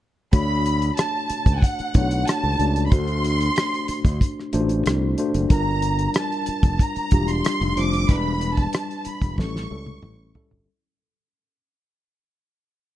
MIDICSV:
0, 0, Header, 1, 6, 480
1, 0, Start_track
1, 0, Key_signature, 2, "major"
1, 0, Tempo, 646552
1, 245, Time_signature, 4, 2, 24, 8
1, 9618, End_track
2, 0, Start_track
2, 0, Title_t, "Violin section"
2, 0, Program_c, 0, 48
2, 261, Note_on_c, 0, 83, 97
2, 703, Note_off_c, 0, 83, 0
2, 728, Note_on_c, 0, 81, 78
2, 1177, Note_off_c, 0, 81, 0
2, 1197, Note_on_c, 0, 78, 78
2, 1681, Note_off_c, 0, 78, 0
2, 1685, Note_on_c, 0, 81, 96
2, 2113, Note_off_c, 0, 81, 0
2, 2130, Note_on_c, 0, 83, 60
2, 2169, Note_on_c, 0, 84, 98
2, 2174, Note_off_c, 0, 83, 0
2, 3127, Note_off_c, 0, 84, 0
2, 4105, Note_on_c, 0, 82, 88
2, 4546, Note_off_c, 0, 82, 0
2, 4590, Note_on_c, 0, 81, 75
2, 5058, Note_off_c, 0, 81, 0
2, 5063, Note_on_c, 0, 82, 83
2, 5414, Note_off_c, 0, 82, 0
2, 5421, Note_on_c, 0, 84, 90
2, 5773, Note_off_c, 0, 84, 0
2, 5782, Note_on_c, 0, 86, 96
2, 6014, Note_off_c, 0, 86, 0
2, 6027, Note_on_c, 0, 83, 102
2, 6376, Note_off_c, 0, 83, 0
2, 6380, Note_on_c, 0, 81, 83
2, 6732, Note_off_c, 0, 81, 0
2, 6740, Note_on_c, 0, 83, 81
2, 6972, Note_off_c, 0, 83, 0
2, 6982, Note_on_c, 0, 85, 77
2, 7663, Note_off_c, 0, 85, 0
2, 9618, End_track
3, 0, Start_track
3, 0, Title_t, "Tine electric piano"
3, 0, Program_c, 1, 4
3, 239, Note_on_c, 1, 57, 65
3, 243, Note_on_c, 1, 62, 57
3, 247, Note_on_c, 1, 66, 54
3, 250, Note_on_c, 1, 73, 70
3, 405, Control_c, 1, 64, 127
3, 977, Note_off_c, 1, 57, 0
3, 979, Note_off_c, 1, 62, 0
3, 980, Note_off_c, 1, 66, 0
3, 982, Note_off_c, 1, 73, 0
3, 1441, Note_on_c, 1, 57, 61
3, 1446, Note_on_c, 1, 62, 57
3, 1448, Note_on_c, 1, 64, 42
3, 1451, Note_on_c, 1, 73, 66
3, 1495, Note_off_c, 1, 64, 0
3, 1496, Note_on_c, 1, 66, 53
3, 1810, Note_off_c, 1, 57, 0
3, 1813, Note_off_c, 1, 62, 0
3, 1815, Note_off_c, 1, 73, 0
3, 1838, Note_off_c, 1, 66, 0
3, 1923, Note_on_c, 1, 57, 58
3, 1926, Note_on_c, 1, 62, 54
3, 1931, Note_on_c, 1, 66, 50
3, 1933, Note_on_c, 1, 74, 64
3, 2108, Note_off_c, 1, 57, 0
3, 2110, Note_off_c, 1, 62, 0
3, 2112, Note_off_c, 1, 66, 0
3, 2113, Note_off_c, 1, 74, 0
3, 2162, Note_on_c, 1, 57, 59
3, 2166, Note_on_c, 1, 62, 57
3, 2170, Note_on_c, 1, 66, 59
3, 2172, Note_on_c, 1, 72, 71
3, 2175, Control_c, 1, 64, 0
3, 2290, Control_c, 1, 64, 127
3, 2898, Note_off_c, 1, 57, 0
3, 2900, Note_off_c, 1, 62, 0
3, 2902, Note_off_c, 1, 66, 0
3, 2903, Note_off_c, 1, 72, 0
3, 3363, Note_on_c, 1, 57, 78
3, 3367, Note_on_c, 1, 62, 70
3, 3370, Note_on_c, 1, 65, 52
3, 3374, Note_on_c, 1, 72, 88
3, 3416, Note_off_c, 1, 65, 0
3, 3419, Note_on_c, 1, 66, 65
3, 3732, Note_off_c, 1, 57, 0
3, 3734, Note_off_c, 1, 62, 0
3, 3737, Note_off_c, 1, 72, 0
3, 3760, Note_off_c, 1, 66, 0
3, 3845, Note_on_c, 1, 57, 72
3, 3847, Note_on_c, 1, 62, 67
3, 3853, Note_on_c, 1, 66, 61
3, 3855, Note_on_c, 1, 72, 80
3, 4029, Note_off_c, 1, 57, 0
3, 4030, Note_off_c, 1, 62, 0
3, 4033, Note_off_c, 1, 66, 0
3, 4034, Note_off_c, 1, 72, 0
3, 4083, Note_on_c, 1, 55, 69
3, 4086, Note_on_c, 1, 62, 54
3, 4089, Note_on_c, 1, 65, 55
3, 4092, Note_on_c, 1, 70, 78
3, 4097, Control_c, 1, 64, 0
3, 4240, Control_c, 1, 64, 127
3, 4819, Note_off_c, 1, 55, 0
3, 4820, Note_off_c, 1, 62, 0
3, 4822, Note_off_c, 1, 65, 0
3, 4823, Note_off_c, 1, 70, 0
3, 5282, Note_on_c, 1, 55, 61
3, 5284, Note_on_c, 1, 62, 60
3, 5287, Note_on_c, 1, 65, 61
3, 5293, Note_on_c, 1, 67, 74
3, 5651, Note_off_c, 1, 55, 0
3, 5652, Note_off_c, 1, 62, 0
3, 5654, Note_off_c, 1, 65, 0
3, 5656, Note_off_c, 1, 67, 0
3, 5760, Note_on_c, 1, 55, 56
3, 5762, Note_on_c, 1, 62, 54
3, 5766, Note_on_c, 1, 65, 53
3, 5769, Note_on_c, 1, 72, 61
3, 5946, Note_off_c, 1, 55, 0
3, 5947, Note_off_c, 1, 62, 0
3, 5950, Note_off_c, 1, 65, 0
3, 5951, Note_off_c, 1, 72, 0
3, 6001, Note_on_c, 1, 55, 67
3, 6005, Note_on_c, 1, 62, 64
3, 6009, Note_on_c, 1, 64, 57
3, 6011, Note_on_c, 1, 71, 70
3, 6014, Control_c, 1, 64, 0
3, 6154, Control_c, 1, 64, 127
3, 6737, Note_off_c, 1, 55, 0
3, 6739, Note_off_c, 1, 62, 0
3, 6741, Note_off_c, 1, 64, 0
3, 6742, Note_off_c, 1, 71, 0
3, 6962, Note_on_c, 1, 55, 61
3, 6964, Note_on_c, 1, 61, 52
3, 6969, Note_on_c, 1, 64, 54
3, 6973, Note_on_c, 1, 69, 68
3, 6975, Control_c, 1, 64, 0
3, 7089, Control_c, 1, 64, 127
3, 7155, Note_off_c, 1, 55, 0
3, 7156, Note_off_c, 1, 61, 0
3, 7159, Note_off_c, 1, 64, 0
3, 7161, Note_off_c, 1, 69, 0
3, 7202, Note_on_c, 1, 55, 64
3, 7207, Note_on_c, 1, 61, 53
3, 7207, Note_on_c, 1, 64, 58
3, 7213, Note_on_c, 1, 69, 73
3, 7570, Note_off_c, 1, 55, 0
3, 7572, Note_off_c, 1, 61, 0
3, 7573, Note_off_c, 1, 64, 0
3, 7576, Note_off_c, 1, 69, 0
3, 7682, Note_on_c, 1, 55, 66
3, 7685, Note_on_c, 1, 61, 62
3, 7688, Note_on_c, 1, 64, 64
3, 7690, Note_on_c, 1, 69, 80
3, 7866, Note_off_c, 1, 55, 0
3, 7868, Note_off_c, 1, 61, 0
3, 7869, Note_off_c, 1, 64, 0
3, 7870, Note_off_c, 1, 69, 0
3, 7934, Control_c, 1, 64, 0
3, 9618, End_track
4, 0, Start_track
4, 0, Title_t, "Fingered electric bass"
4, 0, Program_c, 2, 33
4, 247, Note_on_c, 2, 38, 97
4, 665, Note_off_c, 2, 38, 0
4, 1086, Note_on_c, 2, 37, 75
4, 1190, Note_off_c, 2, 37, 0
4, 1448, Note_on_c, 2, 35, 82
4, 1656, Note_off_c, 2, 35, 0
4, 1807, Note_on_c, 2, 37, 69
4, 1911, Note_off_c, 2, 37, 0
4, 1925, Note_on_c, 2, 37, 78
4, 2134, Note_off_c, 2, 37, 0
4, 2168, Note_on_c, 2, 38, 94
4, 2585, Note_off_c, 2, 38, 0
4, 3007, Note_on_c, 2, 38, 76
4, 3111, Note_off_c, 2, 38, 0
4, 3370, Note_on_c, 2, 33, 79
4, 3578, Note_off_c, 2, 33, 0
4, 3610, Note_on_c, 2, 36, 76
4, 3817, Note_off_c, 2, 36, 0
4, 3969, Note_on_c, 2, 30, 77
4, 4072, Note_off_c, 2, 30, 0
4, 4088, Note_on_c, 2, 31, 98
4, 4505, Note_off_c, 2, 31, 0
4, 4925, Note_on_c, 2, 29, 80
4, 5030, Note_off_c, 2, 29, 0
4, 5288, Note_on_c, 2, 28, 81
4, 5496, Note_off_c, 2, 28, 0
4, 5651, Note_on_c, 2, 29, 83
4, 5753, Note_off_c, 2, 29, 0
4, 5771, Note_on_c, 2, 29, 78
4, 5978, Note_off_c, 2, 29, 0
4, 6008, Note_on_c, 2, 28, 102
4, 6425, Note_off_c, 2, 28, 0
4, 6844, Note_on_c, 2, 28, 78
4, 6949, Note_off_c, 2, 28, 0
4, 6967, Note_on_c, 2, 33, 85
4, 7175, Note_off_c, 2, 33, 0
4, 7209, Note_on_c, 2, 37, 78
4, 7416, Note_off_c, 2, 37, 0
4, 7449, Note_on_c, 2, 33, 84
4, 7656, Note_off_c, 2, 33, 0
4, 7808, Note_on_c, 2, 31, 81
4, 7911, Note_off_c, 2, 31, 0
4, 9618, End_track
5, 0, Start_track
5, 0, Title_t, "Muted fingered electric bass strokes"
5, 967, Note_on_c, 9, 29, 35
5, 1041, Note_off_c, 9, 29, 0
5, 1336, Note_on_c, 9, 29, 37
5, 1410, Note_off_c, 9, 29, 0
5, 2887, Note_on_c, 9, 29, 38
5, 2961, Note_off_c, 9, 29, 0
5, 4814, Note_on_c, 9, 29, 42
5, 4888, Note_off_c, 9, 29, 0
5, 5171, Note_on_c, 9, 29, 46
5, 5246, Note_off_c, 9, 29, 0
5, 6729, Note_on_c, 9, 29, 41
5, 6803, Note_off_c, 9, 29, 0
5, 9618, End_track
6, 0, Start_track
6, 0, Title_t, "Drums"
6, 244, Note_on_c, 9, 42, 82
6, 245, Note_on_c, 9, 36, 102
6, 318, Note_off_c, 9, 42, 0
6, 320, Note_off_c, 9, 36, 0
6, 488, Note_on_c, 9, 42, 62
6, 562, Note_off_c, 9, 42, 0
6, 608, Note_on_c, 9, 42, 46
6, 683, Note_off_c, 9, 42, 0
6, 723, Note_on_c, 9, 42, 79
6, 735, Note_on_c, 9, 37, 103
6, 797, Note_off_c, 9, 42, 0
6, 810, Note_off_c, 9, 37, 0
6, 962, Note_on_c, 9, 42, 62
6, 1036, Note_off_c, 9, 42, 0
6, 1084, Note_on_c, 9, 36, 80
6, 1092, Note_on_c, 9, 42, 45
6, 1158, Note_off_c, 9, 36, 0
6, 1166, Note_off_c, 9, 42, 0
6, 1206, Note_on_c, 9, 36, 82
6, 1216, Note_on_c, 9, 42, 73
6, 1280, Note_off_c, 9, 36, 0
6, 1290, Note_off_c, 9, 42, 0
6, 1328, Note_on_c, 9, 42, 33
6, 1402, Note_off_c, 9, 42, 0
6, 1442, Note_on_c, 9, 42, 71
6, 1447, Note_on_c, 9, 36, 84
6, 1516, Note_off_c, 9, 42, 0
6, 1521, Note_off_c, 9, 36, 0
6, 1566, Note_on_c, 9, 42, 47
6, 1640, Note_off_c, 9, 42, 0
6, 1689, Note_on_c, 9, 42, 85
6, 1701, Note_on_c, 9, 37, 98
6, 1764, Note_off_c, 9, 42, 0
6, 1776, Note_off_c, 9, 37, 0
6, 1927, Note_on_c, 9, 42, 50
6, 2001, Note_off_c, 9, 42, 0
6, 2049, Note_on_c, 9, 42, 46
6, 2123, Note_off_c, 9, 42, 0
6, 2165, Note_on_c, 9, 42, 81
6, 2166, Note_on_c, 9, 36, 100
6, 2239, Note_off_c, 9, 42, 0
6, 2241, Note_off_c, 9, 36, 0
6, 2283, Note_on_c, 9, 42, 29
6, 2357, Note_off_c, 9, 42, 0
6, 2409, Note_on_c, 9, 42, 64
6, 2483, Note_off_c, 9, 42, 0
6, 2529, Note_on_c, 9, 42, 49
6, 2603, Note_off_c, 9, 42, 0
6, 2644, Note_on_c, 9, 42, 75
6, 2657, Note_on_c, 9, 37, 109
6, 2718, Note_off_c, 9, 42, 0
6, 2731, Note_off_c, 9, 37, 0
6, 2778, Note_on_c, 9, 42, 29
6, 2852, Note_off_c, 9, 42, 0
6, 2882, Note_on_c, 9, 42, 65
6, 2957, Note_off_c, 9, 42, 0
6, 3004, Note_on_c, 9, 36, 87
6, 3011, Note_on_c, 9, 42, 50
6, 3020, Note_on_c, 9, 37, 33
6, 3078, Note_off_c, 9, 36, 0
6, 3085, Note_off_c, 9, 42, 0
6, 3095, Note_off_c, 9, 37, 0
6, 3125, Note_on_c, 9, 36, 85
6, 3132, Note_on_c, 9, 42, 64
6, 3200, Note_off_c, 9, 36, 0
6, 3206, Note_off_c, 9, 42, 0
6, 3263, Note_on_c, 9, 37, 29
6, 3337, Note_off_c, 9, 37, 0
6, 3362, Note_on_c, 9, 42, 72
6, 3436, Note_off_c, 9, 42, 0
6, 3485, Note_on_c, 9, 42, 43
6, 3559, Note_off_c, 9, 42, 0
6, 3606, Note_on_c, 9, 42, 81
6, 3618, Note_on_c, 9, 37, 94
6, 3680, Note_off_c, 9, 42, 0
6, 3692, Note_off_c, 9, 37, 0
6, 3844, Note_on_c, 9, 42, 47
6, 3919, Note_off_c, 9, 42, 0
6, 3968, Note_on_c, 9, 42, 47
6, 4042, Note_off_c, 9, 42, 0
6, 4084, Note_on_c, 9, 42, 81
6, 4085, Note_on_c, 9, 36, 99
6, 4158, Note_off_c, 9, 42, 0
6, 4159, Note_off_c, 9, 36, 0
6, 4324, Note_on_c, 9, 42, 64
6, 4398, Note_off_c, 9, 42, 0
6, 4445, Note_on_c, 9, 42, 46
6, 4519, Note_off_c, 9, 42, 0
6, 4559, Note_on_c, 9, 42, 77
6, 4572, Note_on_c, 9, 37, 104
6, 4634, Note_off_c, 9, 42, 0
6, 4646, Note_off_c, 9, 37, 0
6, 4693, Note_on_c, 9, 42, 30
6, 4767, Note_off_c, 9, 42, 0
6, 4797, Note_on_c, 9, 42, 62
6, 4872, Note_off_c, 9, 42, 0
6, 4922, Note_on_c, 9, 36, 94
6, 4927, Note_on_c, 9, 42, 51
6, 4996, Note_off_c, 9, 36, 0
6, 5002, Note_off_c, 9, 42, 0
6, 5044, Note_on_c, 9, 36, 81
6, 5050, Note_on_c, 9, 42, 69
6, 5118, Note_off_c, 9, 36, 0
6, 5124, Note_off_c, 9, 42, 0
6, 5167, Note_on_c, 9, 42, 31
6, 5241, Note_off_c, 9, 42, 0
6, 5278, Note_on_c, 9, 42, 68
6, 5285, Note_on_c, 9, 36, 86
6, 5352, Note_off_c, 9, 42, 0
6, 5360, Note_off_c, 9, 36, 0
6, 5404, Note_on_c, 9, 42, 46
6, 5479, Note_off_c, 9, 42, 0
6, 5528, Note_on_c, 9, 42, 89
6, 5540, Note_on_c, 9, 37, 99
6, 5602, Note_off_c, 9, 42, 0
6, 5614, Note_off_c, 9, 37, 0
6, 5655, Note_on_c, 9, 42, 30
6, 5729, Note_off_c, 9, 42, 0
6, 5768, Note_on_c, 9, 42, 48
6, 5842, Note_off_c, 9, 42, 0
6, 5890, Note_on_c, 9, 42, 44
6, 5964, Note_off_c, 9, 42, 0
6, 6005, Note_on_c, 9, 36, 103
6, 6006, Note_on_c, 9, 42, 77
6, 6080, Note_off_c, 9, 36, 0
6, 6080, Note_off_c, 9, 42, 0
6, 6245, Note_on_c, 9, 42, 64
6, 6319, Note_off_c, 9, 42, 0
6, 6365, Note_on_c, 9, 36, 77
6, 6365, Note_on_c, 9, 42, 44
6, 6439, Note_off_c, 9, 36, 0
6, 6439, Note_off_c, 9, 42, 0
6, 6480, Note_on_c, 9, 42, 89
6, 6493, Note_on_c, 9, 37, 117
6, 6555, Note_off_c, 9, 42, 0
6, 6567, Note_off_c, 9, 37, 0
6, 6614, Note_on_c, 9, 42, 31
6, 6688, Note_off_c, 9, 42, 0
6, 6717, Note_on_c, 9, 42, 69
6, 6792, Note_off_c, 9, 42, 0
6, 6842, Note_on_c, 9, 36, 81
6, 6846, Note_on_c, 9, 42, 49
6, 6855, Note_on_c, 9, 37, 33
6, 6916, Note_off_c, 9, 36, 0
6, 6920, Note_off_c, 9, 42, 0
6, 6929, Note_off_c, 9, 37, 0
6, 6963, Note_on_c, 9, 36, 80
6, 6974, Note_on_c, 9, 38, 51
6, 7037, Note_off_c, 9, 36, 0
6, 7048, Note_off_c, 9, 38, 0
6, 7097, Note_on_c, 9, 38, 47
6, 7171, Note_off_c, 9, 38, 0
6, 7323, Note_on_c, 9, 48, 56
6, 7397, Note_off_c, 9, 48, 0
6, 7442, Note_on_c, 9, 47, 72
6, 7517, Note_off_c, 9, 47, 0
6, 7685, Note_on_c, 9, 43, 91
6, 7759, Note_off_c, 9, 43, 0
6, 7804, Note_on_c, 9, 43, 73
6, 7879, Note_off_c, 9, 43, 0
6, 9618, End_track
0, 0, End_of_file